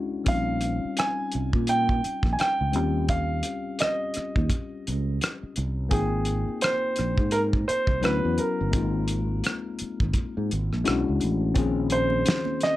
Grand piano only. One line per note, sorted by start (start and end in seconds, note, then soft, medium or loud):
0.28 0.94 F5 medium
0.99 1.64 G#5 medium
1.69 2.29 G5 medium
2.33 2.38 G#5 medium
2.40 3.12 G5 medium
3.09 3.82 F5 medium
3.80 5.52 D#5 medium
5.91 6.57 G#4 medium
6.62 7.35 C5 medium
7.32 7.40 A#4 medium
7.68 8.04 C5 medium
8.04 8.40 B4 medium
8.39 10.46 A#4 medium
11.92 12.64 C5 medium
12.63 12.77 D#5 medium